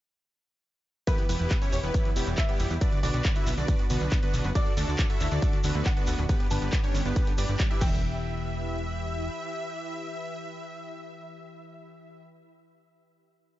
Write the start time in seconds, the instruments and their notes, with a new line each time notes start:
1.07 analog synth pad E3 E4 G4 B4, synth arpeggio sound E3, supersaw synth B3 E4 G4 B4, grand piano B4, digital synth lead B4, kick, closed hi-hat, shekere
1.18 synth arpeggio sound B3, closed hi-hat
1.29 analog synth bass E1, synth arpeggio sound E3, supersaw synth B3 E4 G4 B4, digital synth lead B4, open hi-hat, shekere
1.40 analog synth bass E1, synth arpeggio sound E3, closed hi-hat, shekere
1.51 synth arpeggio sound B3, kick, clap, closed hi-hat, shekere
1.62 synth arpeggio sound E3, supersaw synth C#4 E4 G4 C#5, digital synth lead C#5, closed hi-hat, shekere
1.72 analog synth bass E1, synth arpeggio sound E3, grand piano C#5, open hi-hat, shekere
1.83 analog synth bass E1, supersaw synth B3 E4 G4 B4, synth arpeggio sound B3, digital synth lead B4, closed hi-hat, shekere
1.94 synth arpeggio sound E3, kick, closed hi-hat, shekere
2.05 synth arpeggio sound E3, closed hi-hat
2.16 analog synth bass E1, supersaw synth G3 B3 E4 G4, synth arpeggio sound B3, digital synth lead G4, open hi-hat, shekere
2.27 analog synth bass E1, synth arpeggio sound E3, closed hi-hat, shekere
2.38 synth arpeggio sound E3, grand piano E5, kick, clap, closed hi-hat, shekere
2.49 supersaw synth G3 B3 E4 G4, synth arpeggio sound B3, digital synth lead G4, closed hi-hat
2.59 analog synth bass E1, synth arpeggio sound E3, open hi-hat, shekere
2.70 analog synth bass E2, synth arpeggio sound E3, closed hi-hat, shekere
2.81 synth arpeggio sound B3, analog synth pad B3 D4 F#4, supersaw synth D4 F#4 B4 D5, digital synth lead D5, kick, closed hi-hat, shekere
2.92 synth arpeggio sound D3, closed hi-hat
3.03 analog synth bass B1, synth arpeggio sound D3, supersaw synth D4 F#4 B4 D5, digital synth lead D5, grand piano D5, open hi-hat, shekere
3.14 analog synth bass B1, synth arpeggio sound B3, closed hi-hat, shekere
3.25 synth arpeggio sound D3, kick, clap, closed hi-hat, shekere
3.35 synth arpeggio sound D3, supersaw synth E4 F#4 B4 E5, digital synth lead E5, closed hi-hat, shekere
3.47 analog synth bass B1, synth arpeggio sound B3, open hi-hat, shekere
3.57 analog synth bass B1, synth arpeggio sound D3, supersaw synth D4 F#4 B4 D5, digital synth lead D5, closed hi-hat, shekere
3.68 synth arpeggio sound D3, kick, closed hi-hat, shekere
3.79 synth arpeggio sound B3, closed hi-hat
3.90 analog synth bass B1, synth arpeggio sound D3, supersaw synth B3 D4 F#4 B4, digital synth lead B4, open hi-hat, shekere
4.01 analog synth bass B1, synth arpeggio sound D3, closed hi-hat, shekere
4.12 synth arpeggio sound B3, kick, clap, closed hi-hat, shekere
4.22 synth arpeggio sound D3, supersaw synth B3 D4 F#4 B4, digital synth lead B4, closed hi-hat
4.34 analog synth bass B1, synth arpeggio sound D3, open hi-hat, shekere
4.44 analog synth bass F#1, synth arpeggio sound B3, closed hi-hat, shekere
4.55 synth arpeggio sound D3, analog synth pad D3 A4, supersaw synth D4 F#4 A4 D5, digital synth lead D5, grand piano D5, kick, closed hi-hat, shekere
4.66 synth arpeggio sound D3, closed hi-hat
4.77 analog synth bass D2, synth arpeggio sound A3, supersaw synth D4 F#4 A4 D5, digital synth lead D5, open hi-hat, shekere
4.88 analog synth bass D2, synth arpeggio sound D3, closed hi-hat, shekere
4.99 synth arpeggio sound D3, kick, clap, closed hi-hat, shekere
5.09 synth arpeggio sound A3, supersaw synth E4 F#4 A4 E5, digital synth lead E5, closed hi-hat, shekere
5.20 analog synth bass D2, synth arpeggio sound D3, grand piano E5, open hi-hat, shekere
5.31 analog synth bass D2, synth arpeggio sound D3, supersaw synth D4 F#4 A4 D5, digital synth lead D5, closed hi-hat, shekere
5.42 synth arpeggio sound A3, kick, closed hi-hat, shekere
5.53 synth arpeggio sound D3, closed hi-hat
5.64 analog synth bass D2, synth arpeggio sound D3, supersaw synth B3 D4 F#4 B4, digital synth lead B4, open hi-hat, shekere
5.75 analog synth bass D2, synth arpeggio sound A3, shekere
5.86 synth arpeggio sound D3, grand piano F#5, kick, clap, closed hi-hat, shekere
5.97 synth arpeggio sound D3, supersaw synth B3 D4 F#4 B4, digital synth lead B4, closed hi-hat
6.07 analog synth bass D2, synth arpeggio sound A3, open hi-hat, shekere
6.18 analog synth bass D1, synth arpeggio sound D3, closed hi-hat, shekere
6.29 analog synth pad G3 B3, supersaw synth B3 D4 G4 B4, digital synth lead B4, kick, closed hi-hat, shekere
6.40 synth arpeggio sound B3, closed hi-hat
6.51 analog synth bass G1, synth arpeggio sound D3, supersaw synth B3 D4 G4 B4, digital synth lead B4, grand piano A5, open hi-hat, shekere
6.62 analog synth bass G1, synth arpeggio sound D3, closed hi-hat, shekere
6.72 synth arpeggio sound B3, kick, clap, closed hi-hat, shekere
6.83 synth arpeggio sound D3, supersaw synth C#4 D4 G4 C#5, digital synth lead C#5, closed hi-hat, shekere
6.95 analog synth bass G1, synth arpeggio sound D3, open hi-hat, shekere
7.05 analog synth bass G1, supersaw synth B3 D4 G4 B4, synth arpeggio sound B3, digital synth lead B4, closed hi-hat, shekere
7.16 synth arpeggio sound D3, kick, closed hi-hat, shekere
7.27 synth arpeggio sound D3, closed hi-hat, shekere
7.38 analog synth bass G1, supersaw synth D4 G4 B4 D5, digital synth lead D5, synth arpeggio sound D5, open hi-hat, shekere
7.49 analog synth bass G1, synth arpeggio sound D3, shekere
7.60 synth arpeggio sound G3, kick, clap, closed hi-hat, shekere
7.70 synth arpeggio sound D4, supersaw synth E4 G4 B4 E5, digital synth lead E5, closed hi-hat
7.81 analog synth bass E1, analog synth pad E3 E4 G4 B4, synth arpeggio sound E3, supersaw synth E5, digital synth lead E5, grand piano G5, kick, crash, shekere
7.93 shekere